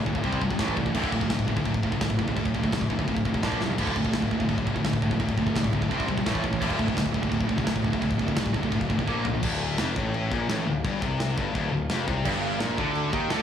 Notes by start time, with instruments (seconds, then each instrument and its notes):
0.06 picked electric bass D1, distorted electric guitar D2 A2, kick
0.15 distorted electric guitar D2 A2, kick
0.23 picked electric bass C2, distorted electric guitar C3 G3 C4, kick, china
0.33 kick
0.41 picked electric bass F1, distorted electric guitar C3 G3, kick
0.51 distorted electric guitar C3 G3, kick
0.59 picked electric bass A1, distorted electric guitar A2 E3 A3, kick, snare, china
0.68 kick
0.77 picked electric bass C2, distorted electric guitar A2 E3, kick
0.85 distorted electric guitar A2 E3, kick
0.94 picked electric bass D1, distorted electric guitar D2 A2 D3, kick, china, crash
1.04 kick
1.12 picked electric bass D1, distorted electric guitar D2 A2, kick
1.20 distorted electric guitar D2 A2, kick
1.29 picked electric bass D1, distorted electric guitar D2 A2, kick, snare, china
1.39 kick
1.47 picked electric bass D1, distorted electric guitar D2 A2, kick
1.56 distorted electric guitar D2 A2, kick
1.65 picked electric bass D1, distorted electric guitar D2 A2, kick, china
1.74 kick
1.83 picked electric bass F1, distorted electric guitar D2 A2, kick
1.92 distorted electric guitar D2 A2, kick
2.01 picked electric bass D1, distorted electric guitar D2 A2, kick, snare, china
2.10 kick
2.19 picked electric bass D1, distorted electric guitar D2 A2, kick
2.27 distorted electric guitar D2 A2, kick
2.35 picked electric bass D1, distorted electric guitar D2 A2, kick, china
2.46 kick
2.54 picked electric bass D1, distorted electric guitar D2 A2, kick
2.63 distorted electric guitar D2 A2, kick
2.72 picked electric bass C2, distorted electric guitar D2 A2, kick, snare, china
2.81 kick
2.90 picked electric bass D1, distorted electric guitar D2 A2, kick
2.99 distorted electric guitar D2 A2, kick
3.08 picked electric bass D1, distorted electric guitar D2 A2, kick, china
3.17 kick
3.25 picked electric bass F1, distorted electric guitar D2 A2, kick
3.34 distorted electric guitar D2 A2, kick
3.43 picked electric bass A#1, distorted electric guitar A#2 F3 A#3, kick, snare, china
3.52 kick
3.61 picked electric bass C2, distorted electric guitar A#2 F3, snare
3.70 distorted electric guitar A#2 F3
3.78 picked electric bass D1, distorted electric guitar D2 A2 D3, kick, crash, china
3.87 kick
3.96 picked electric bass D1, distorted electric guitar D2 A2, kick
4.05 distorted electric guitar D2 A2, kick
4.13 picked electric bass D1, distorted electric guitar D2 A2, kick, snare, china
4.22 kick
4.31 picked electric bass D1, distorted electric guitar D2 A2, kick
4.40 distorted electric guitar D2 A2, kick
4.49 picked electric bass D1, distorted electric guitar D2 A2, kick, china
4.58 kick
4.67 picked electric bass F1, distorted electric guitar D2 A2, kick
4.76 distorted electric guitar D2 A2, kick
4.84 picked electric bass D1, distorted electric guitar D2 A2, kick, snare, china
4.93 kick
5.02 picked electric bass D1, distorted electric guitar D2 A2, kick
5.11 distorted electric guitar D2 A2, kick
5.20 picked electric bass D1, distorted electric guitar D2 A2, kick, china
5.29 kick
5.37 picked electric bass D1, distorted electric guitar D2 A2, kick
5.47 distorted electric guitar D2 A2, kick
5.56 picked electric bass C2, distorted electric guitar D2 A2, kick, snare, china
5.64 kick
5.73 picked electric bass D1, distorted electric guitar D2 A2, kick
5.82 distorted electric guitar D2 A2, kick
5.91 picked electric bass C2, distorted electric guitar C3 G3 C4, kick, china
6.00 kick
6.09 picked electric bass A#1, distorted electric guitar C3 G3, kick
6.18 distorted electric guitar C3 G3, kick
6.26 picked electric bass A1, distorted electric guitar A2 E3 A3, kick, snare, china
6.35 kick
6.44 picked electric bass A1, distorted electric guitar A2 E3, kick
6.53 distorted electric guitar A2 E3, kick
6.61 picked electric bass D1, distorted electric guitar D2 A2 D3, kick, china, crash
6.70 kick
6.79 picked electric bass D1, distorted electric guitar D2 A2, kick
6.88 distorted electric guitar D2 A2, kick
6.97 picked electric bass D1, distorted electric guitar D2 A2, kick, snare, china
7.06 kick
7.14 picked electric bass D1, distorted electric guitar D2 A2, kick
7.23 distorted electric guitar D2 A2, kick
7.29 picked electric bass D1, distorted electric guitar D2 A2, kick, china
7.34 distorted electric guitar D2 A2
7.41 kick
7.49 picked electric bass F1, distorted electric guitar D2 A2, kick
7.58 distorted electric guitar D2 A2, kick
7.67 picked electric bass D1, distorted electric guitar D2 A2, kick, snare, china
7.76 kick
7.84 picked electric bass D1, distorted electric guitar D2 A2, kick
7.93 distorted electric guitar D2 A2, kick
8.02 picked electric bass D1, distorted electric guitar D2 A2, kick, china
8.11 kick
8.19 picked electric bass D1, distorted electric guitar D2 A2, kick
8.28 distorted electric guitar D2 A2, kick
8.36 picked electric bass C2, distorted electric guitar D2 A2, kick, snare, china
8.46 kick
8.54 picked electric bass D1, distorted electric guitar D2 A2, kick
8.63 distorted electric guitar D2 A2, kick
8.72 picked electric bass D1, distorted electric guitar D2 A2, kick, china
8.81 kick
8.90 picked electric bass F1, distorted electric guitar D2 A2, kick
8.99 distorted electric guitar D2 A2, kick
9.08 picked electric bass A#1, distorted electric guitar A#2 F3 A#3, kick
9.25 picked electric bass A#1, distorted electric guitar A#2 F3, floor tom
9.34 distorted electric guitar A#2 F3
9.43 picked electric bass D1, distorted electric guitar D2, kick, crash, china
9.78 picked electric bass F1, distorted electric guitar F2, snare, china
9.96 picked electric bass A1, distorted electric guitar A2, kick
10.14 china
10.32 picked electric bass A#1, distorted electric guitar A#2, kick
10.49 picked electric bass A1, distorted electric guitar A2, snare, china
10.66 picked electric bass D1, distorted electric guitar D2
10.84 picked electric bass G1, distorted electric guitar G2, kick, china
11.02 picked electric bass C2, distorted electric guitar C3, kick
11.20 snare, china
11.37 picked electric bass G1, distorted electric guitar G2, kick
11.55 picked electric bass D1, distorted electric guitar D2, kick, china
11.72 picked electric bass D1, distorted electric guitar D2
11.90 picked electric bass F1, distorted electric guitar F2, snare, china
12.07 picked electric bass C2, distorted electric guitar C3, kick
12.25 picked electric bass G1, distorted electric guitar G2, kick, china, crash
12.60 picked electric bass A#1, distorted electric guitar A#2, snare, china
12.78 picked electric bass D2, distorted electric guitar D3, kick
12.95 china
13.13 picked electric bass D#2, distorted electric guitar D#3, kick
13.30 picked electric bass D2, distorted electric guitar D3, snare, china